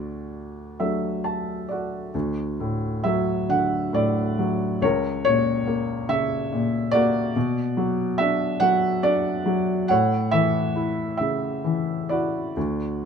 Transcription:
felt piano
Already playing: D2 F#4 D5
0.80 F#3 A3 D4 E5
1.24 A5
1.69 F#4 D5
2.14 D2
2.60 A2
3.04 F#3 E5
3.49 D3 F#5
3.93 A2 D5
4.39 F#3
4.81 C#2 A#4 C#5
5.25 A#2 C#5
5.67 A#3
6.09 C#3 E5
6.52 A#2
6.91 A#3 F#4 D5
7.36 B2
7.77 F#3
8.18 D4 E5
8.60 F#3 F#5
9.03 D4 D5
9.46 F#3
9.88 A2 C#5 F#5
10.31 E3 E5
10.76 E4
11.17 C#3 E5
11.64 E3
12.09 E4 F#4 D5
12.56 D2

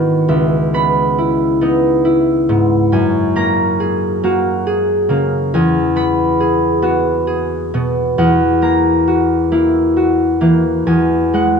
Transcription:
harp
Already playing: G#2 D#3 G#3 B3 F#4 F#5 A#5
0.28 C#2 E5
0.74 B3 B5
1.18 E4
1.61 B3 D#4
2.05 E4
2.49 G#2 B3
2.92 F#2 G#5
3.36 A#3 A#5
3.80 G#4
4.24 A#3 F#4
4.67 G#4
5.09 C#3 A#3
5.54 E2 G#5
5.96 B3 B5
6.40 G#4
6.82 B3 F#4
7.27 G#4
7.74 B2 B3
8.18 E2 F#5
8.62 A#3 A#5
9.08 F#4
9.52 A#3 E4
9.97 F#4
10.41 E3 A#3
10.87 E2 G#5
11.34 G#3 F#5

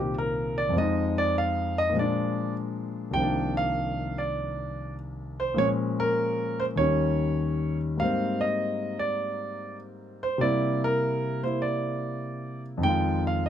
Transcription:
grand piano
Already playing: C2 G2 A#2 C3 D#3 A#3 C4 D#4 F4 G4
0.18 A#4
0.58 D5
0.69 F2
0.73 F3 G#3
0.78 D#4 D#5
1.18 D5
1.38 F5
1.78 D#5
1.90 A#2 F3
1.96 G#3 D5
2.00 D4
3.11 C2 C3 G5
3.15 D#3 F3
3.20 A#3 D4
3.57 F5
4.18 D5
5.40 C5
5.54 A#2 F3 G#3
5.58 C#4 C#5
6.00 A#4
6.60 C5
6.76 D#2 D#3 G3 C#5
6.80 C#4
7.97 G#2 G3 A#3 F5
8.03 C4
8.41 D#5
8.99 D5
10.23 C5
10.38 C3 G3 A#3 D5
10.42 E4
10.84 A#4
11.43 A#3 C4 E4 C5
11.62 D5
12.77 F2 D#3
12.83 G#3 G5
12.89 F4
13.27 F5
13.46 D#5

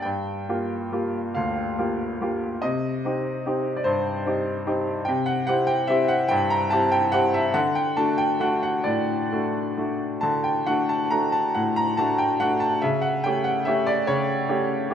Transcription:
upright piano
0.02 G2 G5
0.49 A#3 F4 G4
0.92 A#3 F4 G4
1.35 D2 F5
1.79 A#3 F4 G4
2.21 A#3 F4 G4
2.62 C3 D#5
3.05 C4 D#4 G4
3.46 C4 D#4 G4
3.76 D5
3.84 G2 C5
4.26 C4 D#4 G4
4.67 C4 D#4 G4
5.05 C3 G5
5.26 F#5
5.47 C4 E4 G4 F#5
5.67 G5
5.87 C4 E4 G4 E5
6.08 F#5
6.29 G2 G5
6.50 A#5
6.70 C4 E4 G4 A5
6.92 G5
7.12 C4 E4 G4 F#5
7.34 E5
7.54 D3 F#5
7.75 G5
7.97 A3 D4 F#4 A5
8.18 G5
8.40 A3 D4 F#4 F#5
8.63 F#5
8.84 A2 D5
9.32 A3 D4 F#4
9.77 A3 D4 F#4
10.21 D3 A5
10.44 G5
10.67 A3 D4 F#4 F#5
10.89 A5
11.10 A3 D4 F#4 A#5
11.32 A5
11.55 A2 F#5
11.76 A#5
11.97 A3 D4 F#4 A5
12.18 G5
12.40 A3 D4 F#4 F#5
12.60 A5
12.82 C#3 E5
13.02 F#5
13.24 A3 C#4 G4 G5
13.44 F#5
13.65 A3 C#4 G4 E5
13.87 D5
14.07 C#3 C#5
14.49 A3 C#4 G4
14.90 A3 C#4 G4

